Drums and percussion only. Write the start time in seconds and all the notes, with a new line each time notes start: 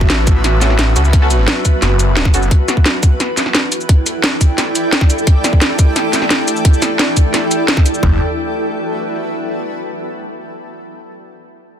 0.01 kick
0.10 snare, closed hi-hat
0.27 kick, closed hi-hat, cabasa
0.44 snare, closed hi-hat, cabasa
0.62 snare, closed hi-hat, cabasa
0.70 snare
0.79 snare, closed hi-hat
0.96 closed hi-hat, cabasa
1.05 cabasa
1.13 kick, closed hi-hat
1.30 closed hi-hat, cabasa
1.48 snare, closed hi-hat
1.65 kick, closed hi-hat, cabasa
1.82 snare, closed hi-hat, cabasa
1.99 closed hi-hat, cabasa
2.17 snare, closed hi-hat
2.25 kick, snare
2.34 closed hi-hat, cabasa
2.43 cabasa
2.51 kick, closed hi-hat
2.68 snare, closed hi-hat, cabasa
2.77 kick
2.86 snare, closed hi-hat
3.03 kick, closed hi-hat, cabasa
3.20 snare, closed hi-hat, cabasa
3.37 snare, closed hi-hat, cabasa
3.46 snare
3.55 snare, closed hi-hat
3.72 closed hi-hat, cabasa
3.81 cabasa
3.89 kick, closed hi-hat
4.06 closed hi-hat, cabasa
4.24 snare, closed hi-hat
4.41 kick, closed hi-hat, cabasa
4.58 snare, closed hi-hat, cabasa
4.75 closed hi-hat, cabasa
4.93 snare, closed hi-hat
5.01 kick, snare
5.10 closed hi-hat, cabasa
5.18 cabasa
5.27 kick, closed hi-hat
5.44 snare, closed hi-hat, cabasa
5.53 kick
5.62 snare, closed hi-hat
5.79 kick, closed hi-hat, cabasa
5.96 snare, closed hi-hat, cabasa
6.13 snare, closed hi-hat, cabasa
6.22 snare
6.30 snare, closed hi-hat
6.48 closed hi-hat, cabasa
6.56 cabasa
6.65 kick, closed hi-hat
6.74 cabasa
6.82 snare, closed hi-hat, cabasa
6.99 snare, closed hi-hat
7.17 kick, closed hi-hat, cabasa
7.34 snare, closed hi-hat, cabasa
7.51 closed hi-hat, cabasa
7.68 snare, closed hi-hat
7.77 kick, snare
7.86 closed hi-hat, cabasa
7.94 cabasa
8.03 kick, floor tom